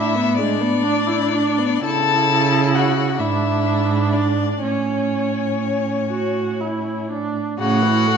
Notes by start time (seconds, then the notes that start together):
Already playing: A2 D4 E4 E5
0.15 B3
0.37 G#3 D4 D5
0.60 B3
0.83 D4
1.07 E4
1.34 D4
1.58 B3
1.83 C#3 E4 A4 A5
2.75 F#4 F#5
3.19 G#2 D4 E4 E5
4.13 D4 D5
4.62 A2 C#4 C#5
6.11 F#4
6.61 E4
7.11 D4
7.59 A2 C#3 F#4 F#5
7.82 E3
8.07 A3